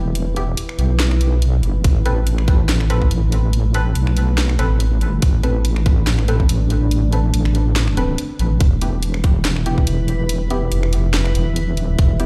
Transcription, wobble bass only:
0.00 0.56 E1 loud
0.79 1.62 B1 loud
1.63 1.83 G1 loud
1.84 3.10 A1 loud
3.11 3.94 A1 loud
3.96 4.57 B1 loud
4.59 5.03 A1 loud
5.03 5.21 G#1 loud
5.22 6.48 A1 loud
6.49 7.32 A1 loud
7.34 8.17 A1 loud
8.39 8.59 A1 loud
8.61 9.86 E1 loud
9.87 10.70 E1 loud
10.72 11.34 F1 loud
11.35 11.79 E1 loud
11.79 11.97 D#1 loud
11.99 12.26 E1 loud

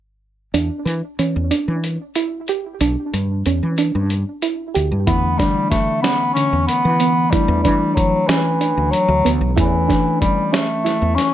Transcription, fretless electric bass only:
0.54 0.69 E2 medium
0.85 1.00 E3 medium
1.19 1.33 E3 medium
1.36 1.50 E2 medium
1.68 1.96 E3 medium
2.81 2.95 B1 medium
3.13 3.42 G2 medium
3.46 3.60 E2 medium
3.63 3.91 E3 medium
3.95 4.23 G2 medium
4.76 4.90 D2 medium
4.92 5.05 G2 medium
5.08 5.36 E2 medium
6.52 6.66 E2 medium
6.85 7.41 E3 medium
7.48 7.62 E2 medium
7.65 8.22 E3 medium
8.29 8.71 E3 medium
8.77 8.91 D2 medium
9.08 9.23 D2 medium
9.25 9.39 D2 medium
9.41 9.55 B1 medium
9.58 9.86 E2 medium
11.02 11.16 E2 medium

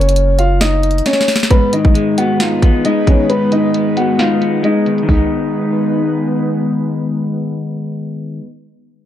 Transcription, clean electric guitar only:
1.51 2.63 G#2 medium
1.73 2.85 D#3 medium
1.95 2.84 G#3 medium
2.18 2.61 B3 loud
2.40 3.52 D#4 medium
2.63 3.74 B3 medium
2.85 3.74 G#3 medium
3.07 3.50 D#3 medium
3.30 4.42 G#2 medium
3.52 4.64 D#3 medium
3.75 4.62 G#3 medium
3.97 4.40 B3 loud
4.19 5.09 D#4 medium
4.41 5.08 B3 medium
4.63 5.06 G#3 medium
4.87 5.02 D#3 medium
5.03 8.39 D#3 medium
5.07 8.43 G#3 medium
5.07 8.47 B3 medium
5.15 8.51 D#4 medium

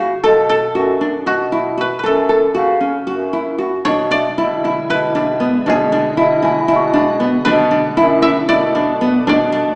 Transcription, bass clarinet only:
0.00 0.12 C#3 medium
0.23 0.67 B2 medium
0.75 1.18 F#2 medium
1.25 1.91 B2 medium
2.04 2.47 F#2 medium
2.56 3.00 C#3 medium
3.08 3.75 F#2 medium
3.86 4.30 B2 medium
4.38 4.82 B2 medium
4.89 5.55 B2 medium
5.67 6.11 B2 medium
6.18 6.62 B2 medium
6.70 7.35 B2 medium
7.47 7.90 B2 loud
7.98 8.42 F#2 medium
8.49 9.15 B2 medium
9.27 9.72 B2 medium

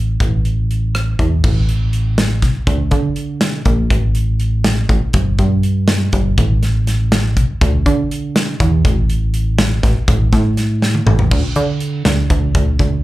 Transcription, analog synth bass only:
0.00 0.18 A1 loud
0.20 1.15 A1 loud
1.19 1.43 E2 medium
1.44 2.44 A1 loud
2.42 2.54 C2 loud
2.67 2.91 D2 loud
2.91 3.62 D3 medium
3.66 3.90 A#1 loud
3.90 4.86 A1 loud
4.89 5.01 A1 loud
5.14 5.38 G1 medium
5.39 6.09 G2 medium
6.13 6.37 G1 loud
6.38 7.38 A1 loud
7.37 7.48 C2 medium
7.61 7.85 D2 loud
7.86 8.56 D3 medium
8.60 8.84 E2 loud
8.85 9.79 A1 loud
9.83 9.95 A1 loud
10.08 10.32 A1 loud
10.33 11.03 A2 loud
11.06 11.30 A1 loud
11.31 11.43 D2 loud
11.56 12.03 D3 loud
12.05 12.29 D2 loud
12.30 12.54 D2 medium
12.55 12.78 D2 loud
12.79 13.04 D2 medium

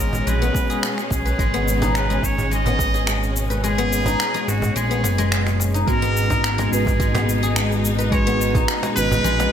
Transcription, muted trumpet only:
0.00 0.29 A#4 medium
0.27 0.83 B4 medium
1.12 1.98 G#4 medium
1.97 2.26 B4 medium
2.24 2.52 C#5 medium
2.54 3.33 D#5 loud
3.63 4.50 G#4 loud
4.48 4.77 F#4 loud
4.76 5.60 G#4 loud
5.87 6.68 A#4 loud
6.71 7.80 G#4 loud
8.12 8.64 C#5 loud
8.96 9.52 B4 loud

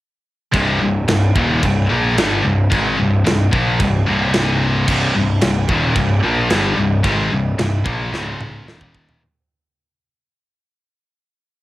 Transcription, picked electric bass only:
0.54 0.79 C1 medium
0.81 1.06 C1 medium
1.08 1.33 C1 medium
1.36 1.61 D#1 medium
1.63 1.88 C1 medium
1.90 2.15 A#1 loud
2.17 2.42 G1 loud
2.45 2.69 C1 medium
2.72 2.97 G#1 loud
3.00 3.24 C1 medium
3.27 3.51 C1 medium
3.53 3.78 A#1 medium
3.80 4.05 C1 medium
4.08 4.84 C1 loud
4.88 5.13 C1 loud
5.16 5.40 C1 medium
5.43 5.67 C1 medium
5.69 5.94 D#1 loud
5.96 6.21 C1 medium
6.24 6.48 A#1 medium
6.50 6.75 G1 loud
6.77 7.02 C1 medium
7.04 7.29 G#1 loud
7.32 7.57 C1 medium
7.59 7.84 C1 medium
7.86 8.11 A#1 medium
8.13 8.63 C#1 loud
8.67 9.17 D#1 loud

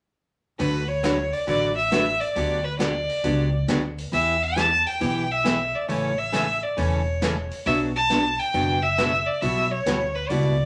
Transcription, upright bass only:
0.60 1.30 D2 medium
1.48 2.18 A1 medium
2.36 3.06 D2 medium
3.24 3.62 C#2 medium
3.68 4.06 D2 medium
4.12 4.83 E2 medium
5.01 5.72 B1 medium
5.89 6.60 A1 medium
6.78 7.48 E1 medium
7.66 8.37 B1 loud
8.54 9.25 F#1 medium
9.42 9.77 B1 loud
9.86 10.24 D2 medium
10.30 10.65 C#2 medium

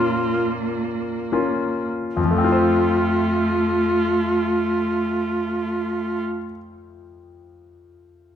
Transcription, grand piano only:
0.00 2.20 A#2 soft
0.00 1.32 A#3 soft
0.00 1.33 C#4 soft
0.00 1.33 F4 soft
1.32 2.13 A#3 soft
1.32 2.13 C#4 soft
1.32 2.13 F4 soft
2.17 6.22 F2 soft
2.24 6.29 F3 soft
2.31 6.36 A3 soft
2.38 6.44 C4 soft
2.44 6.50 F4 soft
2.52 6.57 C5 soft

